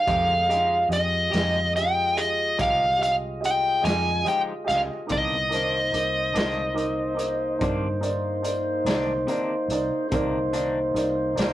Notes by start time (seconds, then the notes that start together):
Already playing: F5
0.06 F2 F3 G#3 A3 D#4 G4 G#4 D#5, kick, closed hi-hat
0.48 G#3 D#4 G4 G#4 D#5, closed hi-hat
0.52 G#3 F4
0.89 F2 G4 G#4 D#5, closed hi-hat
0.93 D#5
1.30 F2 D#4 G4 G#4 D#5, closed hi-hat
1.34 G#3, snare
1.75 G4 G#4 D#5 G5, closed hi-hat
2.15 G4 G#4 D#5, closed hi-hat
2.57 C2 F3 G#3 D#4 G4 G#4 D#5 F5, kick, closed hi-hat
2.97 G4 G#4 D#5
3.03 F5, closed hi-hat
3.40 G4 G#4 D#5, closed hi-hat
3.46 G5
3.81 F2 F4 G4 G#4 D#5, closed hi-hat
3.85 G#3 D#4 G#5, snare
4.24 F3 G#3 G4 G#4 D#5, closed hi-hat
4.28 D#4 G4 G5
4.64 G4 G#4 D#5 F5
4.69 C#2, snare, closed hi-hat
5.07 C2 C3 B3 D#4 A#4 D#5 D6, kick, closed hi-hat
5.11 D#3 E3 A#3 D4 D#5
5.49 A#3 D#4 A#4 C5 D6, closed hi-hat
5.54 D#3 A#3 D4
5.92 C2 D#4 A#4 D6, closed hi-hat
6.34 C2 A#3 D4 D#4 A#4 D6, snare, closed hi-hat
6.39 D#3
6.74 D#4 A#4 D6, closed hi-hat
7.15 D#4 A#4 D6, closed hi-hat
7.59 G2 C3 D#3 D#4 A#4 D5, kick, closed hi-hat
7.63 A#3 D4
8.01 D#4 A#4 D5, closed hi-hat
8.42 D#4 A#4 D5, closed hi-hat
8.85 C2 A#3 D4 D#4 A#4 D5, snare, closed hi-hat
8.90 D#3
9.27 C3 D#3 A#3 D4 D#4 A#4 D5, closed hi-hat
9.68 C2 D#4 A#4 D5, closed hi-hat
10.09 C2 C3 A#3 D#4 C5, kick, closed hi-hat
10.13 D#3 A#3 D4 A#4 D5
10.53 D#3 A#3 D4 D#4 A#4 D5, closed hi-hat
10.94 C2 D#4 A#4 D5, closed hi-hat
11.35 C2 D4 D#4 A#4 D5, snare, closed hi-hat
11.41 D#3 A#3